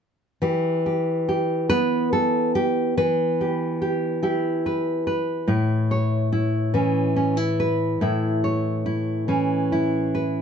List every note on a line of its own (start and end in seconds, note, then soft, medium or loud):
0.42 2.97 E3 medium
0.42 0.86 G4 soft
0.86 1.28 G4 soft
1.29 1.69 G4 soft
1.70 4.22 B3 medium
1.70 2.12 B4 medium
2.13 2.55 A4 medium
2.55 2.97 G4 medium
2.97 6.73 E3 medium
2.97 4.64 B4 medium
3.41 3.80 G4 soft
3.82 4.22 G4 soft
4.23 5.48 E4 medium
4.23 5.43 G4 soft
4.66 5.07 B4 soft
5.07 5.51 B4 soft
5.48 7.95 A2 medium
5.48 6.32 E4 medium
5.91 7.59 C#5 medium
6.32 7.16 E4 soft
6.74 9.28 E3 medium
6.74 7.15 C#4 soft
7.16 7.37 C#4 medium
7.37 8.00 E4 soft
7.60 8.04 B4 medium
8.01 10.42 A2 medium
8.01 8.85 E4 medium
8.44 10.13 C#5 soft
8.86 9.72 E4 soft
9.28 10.42 E3 medium
9.28 10.42 C#4 medium
9.72 10.42 E4 soft
10.15 10.42 B4 soft